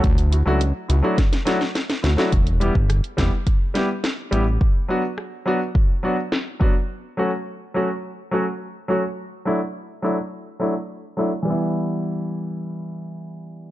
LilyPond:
<<
  \new Staff \with { instrumentName = "Grand piano" } { \time 4/4 \key e \dorian \tempo 4 = 105 r8 <e' fis'>16 <fis a d' e' fis'>16 r8 <e' fis'>16 <fis a d' e' fis'>16 r8 <fis a d' e' fis'>16 r8. <e' fis'>16 <fis a d' e' fis'>16 | r8 <g b e' g'>16 r8. <g b e' g'>16 r8. <g b e' g'>16 r8. <g b e' g'>16 r16 | r8 <fis b d' fis'>16 r8. <fis b d' fis'>16 r8. <fis b d' fis'>16 r8. <fis b d' fis'>16 r16 | r8 <fis a cis' fis'>16 r8. <fis a cis' fis'>16 r8. <fis a cis' fis'>16 r8. <fis a cis' fis'>16 r16 |
r8 <fis a d' e'>16 r8. <fis a d' e'>16 r8. <fis a d' e'>16 r8. <fis a d' e'>16 r16 | <e g b e'>1 | }
  \new Staff \with { instrumentName = "Analog synth bass" } { \clef bass \time 4/4 \key e \dorian d,8. cis,8 r16 cis,16 r4. r16 d,16 r16 | e,,8. g,,8 r16 e,,16 r4. r16 a,,8 | r1 | r1 |
r1 | r1 | }
  \new DrumStaff \with { instrumentName = "Drums" } \drummode { \time 4/4 <hh bd>16 hh16 hh8 hh8 hh8 <hh bd sn>16 <hh sn>16 <hh sn>16 sn16 <hh sn>16 <hh sn>16 <hh sn>16 sn16 | <hh bd>16 hh16 hh16 bd16 <hh ss>16 hh16 <hh bd sn>8 <hh bd>8 <hh sn>8 <hh sn>8 hh8 | bd4 ss4 bd4 sn8 bd8 | r4 r4 r4 r4 |
r4 r4 r4 r4 | r4 r4 r4 r4 | }
>>